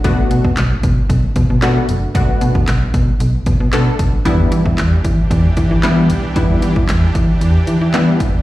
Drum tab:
HH |x-x-x-x-x-x-x-x-|x-x-x-x-x-x-x-x-|x-x-x-x-x-x-x-x-|x-x-x-x-x-x-x-x-|
CP |----x-------x---|----x-------x---|----x-------x---|----x-------x---|
SD |----o-------o---|----o-------o---|----o-------o---|----o-------o---|
BD |o--o--o-o-o-----|o--o--o---o---o-|o--o--o-o-o-----|o--o--o-------o-|